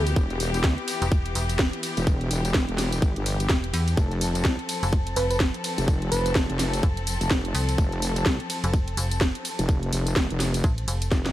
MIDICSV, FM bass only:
0, 0, Header, 1, 2, 480
1, 0, Start_track
1, 0, Tempo, 476190
1, 165, Time_signature, 4, 2, 24, 8
1, 11412, End_track
2, 0, Start_track
2, 0, Title_t, "FM bass"
2, 0, Program_c, 0, 39
2, 0, Note_on_c, 0, 38, 97
2, 149, Note_off_c, 0, 38, 0
2, 1027, Note_on_c, 0, 28, 102
2, 1350, Note_off_c, 0, 28, 0
2, 1365, Note_on_c, 0, 28, 99
2, 1724, Note_off_c, 0, 28, 0
2, 3526, Note_on_c, 0, 28, 96
2, 3750, Note_off_c, 0, 28, 0
2, 3765, Note_on_c, 0, 40, 97
2, 3990, Note_off_c, 0, 40, 0
2, 4868, Note_on_c, 0, 29, 97
2, 5190, Note_off_c, 0, 29, 0
2, 5207, Note_on_c, 0, 29, 98
2, 5565, Note_off_c, 0, 29, 0
2, 6886, Note_on_c, 0, 29, 100
2, 7245, Note_off_c, 0, 29, 0
2, 7606, Note_on_c, 0, 36, 94
2, 7830, Note_off_c, 0, 36, 0
2, 8708, Note_on_c, 0, 29, 101
2, 9030, Note_off_c, 0, 29, 0
2, 9045, Note_on_c, 0, 29, 102
2, 9405, Note_off_c, 0, 29, 0
2, 10724, Note_on_c, 0, 33, 98
2, 10949, Note_off_c, 0, 33, 0
2, 10964, Note_on_c, 0, 29, 97
2, 11189, Note_off_c, 0, 29, 0
2, 11412, End_track
0, 0, End_of_file